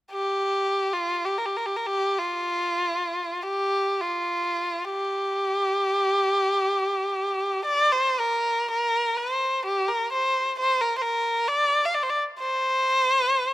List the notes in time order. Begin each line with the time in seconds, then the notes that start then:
0.12 G4
0.93 F4
1.25 G4
1.38 A#4
1.46 G4
1.56 A#4
1.66 G4
1.76 A#4
1.86 G4
2.18 F4
3.42 G4
4.01 F4
4.84 G4
7.65 D5
7.92 C5
8.20 A#4
8.71 A#4
9.17 C5
9.65 G4
9.88 A#4
10.12 C5
10.59 C5
10.81 A#4
10.97 A#4 C5
11.48 D5
11.85 F5
11.94 D5
12.03 C5
12.10 D5
12.39 C5